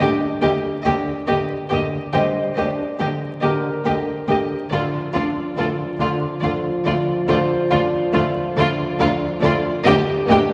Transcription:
0.00 0.08 D2 medium
0.00 0.26 D4 medium
0.00 0.09 G4 medium
0.00 1.66 D6 medium
0.41 0.50 D2 medium
0.41 0.51 D2 medium
0.41 0.69 D3 medium
0.41 0.49 A#3 medium
0.41 0.50 G4 medium
0.41 0.49 D#5 medium
0.83 0.93 D2 medium
0.83 0.94 D2 medium
0.83 1.12 D3 loud
0.83 0.93 A#3 medium
0.83 0.94 G4 medium
0.83 0.91 D#5 medium
1.27 1.37 D2 medium
1.27 1.55 D3 medium
1.27 1.35 A#3 medium
1.27 1.36 G4 soft
1.27 1.36 D#5 soft
1.71 1.79 D2 medium
1.71 1.98 D3 medium
1.71 1.79 A#3 soft
1.71 1.79 G4 soft
1.71 1.80 D#5 medium
2.14 2.22 D2 medium
2.14 2.41 D3 medium
2.14 2.47 G3 medium
2.14 2.22 A#3 medium
2.14 2.22 G4 soft
2.14 4.67 C5 medium
2.14 2.22 D#5 medium
2.14 2.46 D#5 medium
2.56 2.65 D2 medium
2.56 2.64 A#3 soft
2.56 2.83 D4 medium
2.56 2.66 G4 soft
2.56 2.64 D#5 soft
2.99 3.08 D2 soft
2.99 3.26 D3 medium
2.99 3.07 A#3 soft
2.99 3.08 G4 soft
2.99 3.08 D#5 soft
3.41 3.50 D2 medium
3.41 3.51 D2 soft
3.41 3.69 D3 loud
3.41 3.49 A#3 soft
3.41 3.51 G4 soft
3.41 5.97 A#4 soft
3.41 3.51 D#5 soft
3.84 3.94 D2 soft
3.84 3.94 D2 medium
3.84 4.11 D3 medium
3.84 3.92 A#3 soft
3.84 3.93 G4 soft
3.84 3.94 D#5 soft
4.27 4.35 D2 medium
4.27 4.37 D2 medium
4.27 4.54 D3 medium
4.27 4.36 A#3 soft
4.27 4.37 G4 soft
4.27 4.37 D#5 soft
4.71 4.79 D2 medium
4.71 4.97 D3 medium
4.71 9.82 F3 medium
4.71 9.82 F4 medium
4.71 4.81 F4 soft
4.71 4.80 A4 soft
4.71 4.80 D5 medium
5.13 5.22 D2 soft
5.13 5.22 D2 medium
5.13 5.40 D4 medium
5.13 5.22 F4 soft
5.13 5.23 A4 soft
5.13 5.21 D5 soft
5.56 5.64 D2 medium
5.56 5.66 D2 soft
5.56 5.83 D3 medium
5.56 5.67 F4 soft
5.56 5.65 A4 soft
5.56 5.65 D5 soft
5.99 6.07 D2 medium
5.99 6.25 D3 loud
5.99 6.09 A3 soft
5.99 6.09 F4 soft
5.99 6.08 D5 soft
6.41 6.50 D2 medium
6.41 6.68 D3 medium
6.41 6.51 A3 medium
6.41 6.51 F4 soft
6.41 6.49 D5 medium
6.84 6.93 D2 medium
6.84 7.11 D3 medium
6.84 6.94 A3 medium
6.84 6.95 F4 soft
6.84 6.92 D5 medium
7.27 7.35 D2 medium
7.27 7.36 D2 medium
7.27 7.54 D3 medium
7.27 7.37 A3 medium
7.27 7.37 F4 medium
7.27 9.82 C5 medium
7.27 7.37 D5 medium
7.71 7.79 D2 medium
7.71 7.79 A3 medium
7.71 7.97 D4 medium
7.71 7.79 F4 medium
7.71 7.80 D5 medium
8.13 8.21 D2 medium
8.13 8.22 D2 medium
8.13 8.40 D3 medium
8.13 8.21 A3 medium
8.13 8.22 F4 medium
8.13 8.22 D5 medium
8.56 8.65 D2 medium
8.56 8.83 D3 loud
8.56 8.64 A3 medium
8.56 8.68 F4 medium
8.56 8.65 D5 medium
8.99 9.07 D2 medium
8.99 9.08 D2 medium
8.99 9.26 D3 medium
8.99 9.07 A3 medium
8.99 9.09 F4 medium
8.99 9.07 D5 medium
9.41 9.50 D2 medium
9.41 9.51 D2 medium
9.41 9.69 D3 medium
9.41 9.49 A3 medium
9.41 9.53 F4 medium
9.41 9.50 D5 medium
9.84 9.94 D2 loud
9.84 10.11 D3 loud
9.84 10.53 G3 loud
9.84 9.92 A#3 medium
9.84 9.95 G4 medium
9.84 10.53 G4 loud
9.84 9.93 D#5 medium
10.27 10.37 D2 medium
10.27 10.35 A#3 medium
10.27 10.53 D4 medium
10.27 10.39 G4 medium
10.27 10.35 D#5 medium

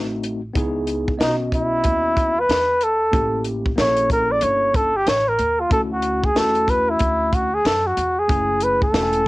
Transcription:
0.00 0.52 A1 medium
0.00 0.39 A3 medium
0.00 0.40 C4 medium
0.00 0.40 D#4 medium
0.00 0.41 F#4 medium
0.23 closed hi-hat medium
0.54 1.17 C#2 medium
0.54 1.12 B3 medium
0.54 1.13 D#4 medium
0.54 1.13 E4 medium
0.54 1.14 G#4 medium
0.54 kick loud
0.54 closed hi-hat medium
0.87 closed hi-hat medium
1.08 kick medium
1.18 1.81 B1 medium
1.18 2.32 B3 medium
1.18 2.34 C#4 medium
1.18 1.28 F4 medium
1.18 2.33 D#5 medium
1.18 snare loud
1.18 closed hi-hat medium
1.22 1.36 D#4 medium
1.27 2.37 F#4 medium
1.52 2.41 E4 medium
1.52 kick medium
1.52 closed hi-hat medium
1.84 2.46 D#2 medium
1.84 kick medium
1.84 closed hi-hat medium
2.17 kick loud
2.17 closed hi-hat medium
2.40 2.85 B4 loud
2.49 3.10 E2 medium
2.49 snare loud
2.49 closed hi-hat medium
2.81 3.47 A4 loud
2.81 closed hi-hat medium
3.12 3.74 A1 loud
3.12 3.70 A#3 medium
3.12 3.70 C#4 medium
3.12 3.71 E4 medium
3.12 3.71 G4 medium
3.12 kick loud
3.12 closed hi-hat medium
3.44 closed hi-hat medium
3.66 kick medium
3.76 4.39 A#1 medium
3.76 4.91 A#3 medium
3.76 4.91 C#4 medium
3.76 4.92 E4 medium
3.76 4.92 A4 medium
3.76 4.09 C#5 loud
3.76 snare loud
3.76 closed hi-hat medium
3.97 closed hi-hat medium
4.10 4.33 A#4 loud
4.10 kick medium
4.10 closed hi-hat medium
4.31 4.45 D5 loud
4.41 5.03 G1 medium
4.41 4.77 C#5 medium
4.41 closed hi-hat medium
4.74 4.98 A4 medium
4.74 kick loud
4.74 closed hi-hat medium
4.96 5.10 G4 loud
5.06 5.37 A1 medium
5.06 5.30 C#5 loud
5.06 snare loud
5.06 closed hi-hat medium
5.28 5.62 A#4 medium
5.39 5.70 D#2 medium
5.39 closed hi-hat medium
5.60 5.72 F4 medium
5.69 6.32 D2 loud
5.69 6.28 A3 medium
5.69 6.28 C#4 medium
5.69 6.29 E4 medium
5.69 6.29 F#4 medium
5.69 5.81 A4 loud
5.69 kick loud
5.69 closed hi-hat medium
5.93 6.27 F#4 medium
6.02 closed hi-hat medium
6.24 6.39 G#4 medium
6.24 kick medium
6.35 6.97 E2 medium
6.35 7.49 A3 medium
6.35 7.49 C#4 medium
6.35 7.50 E4 medium
6.35 7.51 F#4 medium
6.35 6.71 A4 loud
6.35 snare loud
6.35 closed hi-hat medium
6.55 closed hi-hat soft
6.68 6.91 B4 loud
6.68 kick medium
6.68 closed hi-hat medium
6.90 7.36 E4 medium
6.99 7.62 D2 loud
6.99 kick medium
6.99 closed hi-hat medium
7.33 7.56 F#4 medium
7.33 kick loud
7.33 closed hi-hat medium
7.54 7.68 G#4 medium
7.65 7.96 F#2 loud
7.65 7.88 A4 medium
7.65 snare loud
7.65 closed hi-hat medium
7.87 8.20 F#4 medium
7.97 8.28 E2 medium
7.97 closed hi-hat medium
8.19 8.65 G#4 loud
8.28 8.91 F#1 loud
8.28 8.86 A3 medium
8.28 8.87 C#4 medium
8.28 8.87 E4 medium
8.28 8.88 G#4 medium
8.28 kick loud
8.28 closed hi-hat medium
8.60 8.82 B4 medium
8.60 closed hi-hat medium
8.82 9.28 A4 loud
8.82 kick loud
8.92 9.28 E1 loud
8.92 9.28 A3 medium
8.92 9.28 C#4 medium
8.92 9.28 E4 medium
8.92 9.03 F#4 medium
8.92 snare loud
8.92 closed hi-hat medium
9.02 9.28 G#5 medium
9.13 closed hi-hat medium

